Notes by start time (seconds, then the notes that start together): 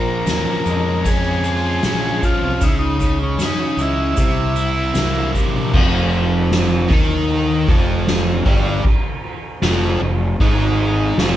Already playing: A#1 A#2 F3 C#4 A#4
0.26 D#2 C#4, snare, open hi-hat, shaker
0.66 F2 G#3, shaker
1.05 C#4 G#4, kick, open hi-hat, shaker
1.44 F4, shaker
1.83 A#1 C#4 G#4, snare, open hi-hat, shaker
2.22 F3 F4, kick, shaker
2.43 C2
2.61 C#2 C#3 D#4, kick, open hi-hat, shaker
2.68 E4
2.79 D#4
2.99 C#3, kick, shaker
3.23 C#4
3.38 F#2 C#4, snare, open hi-hat, shaker
3.45 D#4
3.77 C#2 G#3, shaker
3.82 E4
4.17 C2 C3, kick, open hi-hat, shaker
4.55 E4, shaker
4.95 C2 A#3, snare, open hi-hat, shaker
5.33 C3, kick, shaker
5.55 A#1
5.73 F1 F2 F3, kick, crash
6.13 crash
6.51 snare, crash
6.88 D#2 D#3 D#4, kick, crash
7.29 crash
7.68 F1 F2 F3, kick, crash
8.07 snare, crash
8.45 G1 G2 G3, kick, crash
8.84 muted overdriven electric guitar stroke, muted fingered electric bass stroke, kick, crash
9.23 crash
9.62 F1 F2 F3, snare, crash
10.01 F1 F2, crash
10.40 G#1 G#2 G#3, kick, crash
10.79 crash
11.17 F1 F2 F3, snare, crash